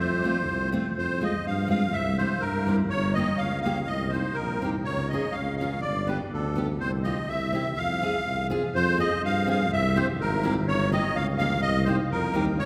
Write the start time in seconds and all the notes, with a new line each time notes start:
0.00 F2 C5
0.24 A3 C4 F4
0.49 C2
0.72 A3 C4 F4
0.98 F2 C5
1.21 G#3 C4 F4 D#5
1.46 G2 F5
1.68 G#3 C4 F4 F5
1.93 C2 E5
2.17 G3 C4 E4 C5
2.41 G2 A#4
2.67 G3 C4 E4
2.90 G1 C#5
3.14 A#3 C#4 D#5
3.19 G4
3.37 C#2 F5
3.62 A#3 F5
3.66 C#4 G4
3.87 C2 D#5
4.09 C5
4.14 C4 D#4 G4
4.34 A#4
4.38 A#1
4.62 C2 C4 D#4 G4
4.84 C#2 C#5
5.08 D#5
5.13 C#4 F4 G#4
5.32 F5
5.36 C#2
5.57 F5
5.61 C#4 F4 G#4
5.81 D5
5.86 G1
6.07 B3 D4 G4 B4
6.33 D2 A4
6.55 B3 D4 G4
6.80 C2 C5
7.04 C4 F4 G4 D#5
7.29 C2 E5
7.53 C4 E4 G4
7.77 F2 F5
8.02 C4 F4 G#4
8.26 C2
8.50 C4 F4 G#4
8.75 F2 C5
8.98 C4 F4 G#4 D#5
9.23 G2 F5
9.47 C4 F4 G#4 F5
9.72 C2 E5
9.96 C4 E4 G4 C5
10.19 G#1 A#4
10.43 C4 E4 G4
10.67 G1 C#5
10.92 A#3 C#4 G4 D#5
11.15 C#2 F5
11.38 A#3 C#4 G4 F5
11.62 C2 D#5
11.85 C4 D#4 G4 C5
12.11 F2 A#4
12.34 D#2 C4 D#4 G4
12.59 C#2 C#5